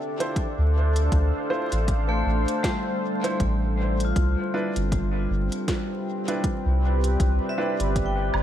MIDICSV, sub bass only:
0, 0, Header, 1, 2, 480
1, 0, Start_track
1, 0, Tempo, 759494
1, 710, Time_signature, 4, 2, 24, 8
1, 5327, End_track
2, 0, Start_track
2, 0, Title_t, "Sub bass"
2, 0, Program_c, 0, 38
2, 369, Note_on_c, 0, 38, 87
2, 690, Note_off_c, 0, 38, 0
2, 709, Note_on_c, 0, 38, 100
2, 832, Note_off_c, 0, 38, 0
2, 1089, Note_on_c, 0, 33, 84
2, 1410, Note_off_c, 0, 33, 0
2, 1428, Note_on_c, 0, 33, 93
2, 1552, Note_off_c, 0, 33, 0
2, 2149, Note_on_c, 0, 33, 93
2, 2610, Note_off_c, 0, 33, 0
2, 2629, Note_on_c, 0, 36, 100
2, 2752, Note_off_c, 0, 36, 0
2, 3009, Note_on_c, 0, 31, 83
2, 3330, Note_off_c, 0, 31, 0
2, 3350, Note_on_c, 0, 31, 96
2, 3472, Note_off_c, 0, 31, 0
2, 4208, Note_on_c, 0, 36, 91
2, 4530, Note_off_c, 0, 36, 0
2, 4549, Note_on_c, 0, 36, 101
2, 4672, Note_off_c, 0, 36, 0
2, 4928, Note_on_c, 0, 31, 84
2, 5250, Note_off_c, 0, 31, 0
2, 5269, Note_on_c, 0, 31, 90
2, 5327, Note_off_c, 0, 31, 0
2, 5327, End_track
0, 0, End_of_file